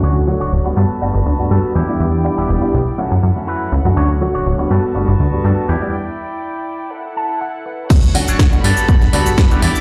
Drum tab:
CC |----------------|----------------|----------------|----------------|
HH |----------------|----------------|----------------|----------------|
SH |----------------|----------------|----------------|----------------|
SD |----------------|----------------|----------------|----------------|
BD |----------------|----------------|----------------|----------------|

CC |x---------------|
HH |--o---o---o---o-|
SH |xx-xxx-xxx-xxx-x|
SD |----o----o--o---|
BD |o---o---o---o---|